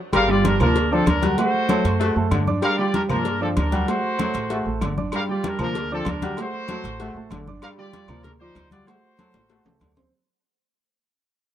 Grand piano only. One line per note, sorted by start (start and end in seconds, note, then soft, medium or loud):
0.28 0.54 G3 loud
0.28 0.54 G4 medium
0.28 0.55 G5 medium
0.61 0.86 A#3 medium
0.61 0.86 A#4 medium
0.61 0.86 A#5 medium
0.92 1.17 D4 medium
0.92 1.17 D5 medium
0.92 1.17 D6 medium
1.23 1.35 F#4 medium
1.23 1.35 F#5 medium
1.23 1.36 F#6 medium
1.38 1.64 A3 medium
1.38 1.64 F#4 medium
1.38 1.64 F#5 medium
1.69 1.95 A3 medium
1.69 1.95 A4 medium
1.69 1.95 A5 medium
2.01 2.14 F#4 medium
2.01 2.13 F#5 medium
2.01 2.14 F#6 medium
2.15 2.41 A3 medium
2.15 2.42 A4 medium
2.15 2.42 A5 medium
2.47 2.73 D4 medium
2.47 2.73 D5 medium
2.47 2.73 D6 medium
2.79 3.04 G3 medium
2.79 3.05 G4 loud
2.79 3.04 G5 loud
3.10 3.35 A#3 medium
3.10 3.36 A#4 medium
3.10 3.36 A#5 medium
3.41 3.66 D4 medium
3.41 3.67 D5 medium
3.41 3.67 D6 medium
3.72 3.85 F#4 medium
3.72 3.85 F#5 medium
3.72 3.85 F#6 medium
3.88 4.13 A3 medium
3.88 4.14 F#4 medium
3.88 4.14 F#5 medium
4.19 4.44 A3 medium
4.19 4.44 A4 medium
4.19 4.45 A5 medium
4.50 4.63 F#4 medium
4.50 4.63 F#5 medium
4.50 4.64 F#6 medium
4.66 4.91 A3 medium
4.66 4.92 A4 medium
4.66 4.92 A5 medium
4.97 5.23 D4 medium
4.97 5.23 D5 medium
4.97 5.23 D6 medium
5.29 5.54 G3 medium
5.29 5.54 G4 medium
5.29 5.54 G5 medium
5.60 5.85 A#3 medium
5.60 5.85 A#4 medium
5.60 5.85 A#5 medium
5.91 6.16 D4 medium
5.91 6.17 D5 medium
5.91 6.17 D6 medium
6.22 6.35 F#4 medium
6.22 6.35 F#5 medium
6.22 6.35 F#6 medium
6.38 6.63 A3 medium
6.38 6.64 F#4 medium
6.38 6.64 F#5 medium
6.69 6.95 A3 medium
6.69 6.95 A4 medium
6.69 6.95 A5 medium
7.00 7.13 F#4 medium
7.00 7.13 F#5 medium
7.00 7.13 F#6 medium
7.16 7.42 A3 medium
7.16 7.42 A4 medium
7.16 7.42 A5 medium
7.47 7.73 D4 medium
7.47 7.73 D5 medium
7.47 7.73 D6 medium
7.78 8.04 G3 loud
7.78 8.04 G4 medium
7.78 8.04 G5 loud
8.09 8.34 A#3 medium
8.09 8.35 A#4 medium
8.09 8.35 A#5 medium
8.41 8.66 F4 medium
8.41 8.66 D5 medium
8.41 8.66 D6 medium
8.72 8.85 F#4 medium
8.72 8.85 F#5 medium
8.72 8.85 F#6 medium
8.87 9.13 A3 medium
8.87 9.13 F#4 medium
8.87 9.13 F#5 medium
9.19 9.44 A3 medium
9.19 9.44 A4 medium
9.19 9.44 A5 medium
9.50 9.63 F#4 medium
9.50 9.63 F#5 medium
9.50 9.63 F#6 medium
9.65 9.91 A3 medium
9.65 9.91 A4 medium
9.65 9.91 A5 medium
9.96 10.09 C4 medium
9.96 10.10 C5 medium
9.96 10.10 C6 medium